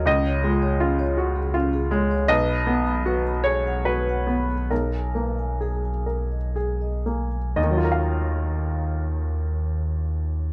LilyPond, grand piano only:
\new Staff \with { instrumentName = "Grand piano" } { \time 6/8 \key ees \minor \tempo 4. = 46 << { ees''2~ ees''8 r8 | dis''4. des''8 b'4 | bes'2~ bes'8 r8 | <ees, ees ges f' bes' ees'' f''>2. | } \\ { des,8 aes8 f'8 ges'8 f'8 aes8 | b,,8 b8 fis'8 aes'8 fis'8 b8 | ces,8 bes8 aes'8 bes'8 aes'8 bes8 | r2. | } >> }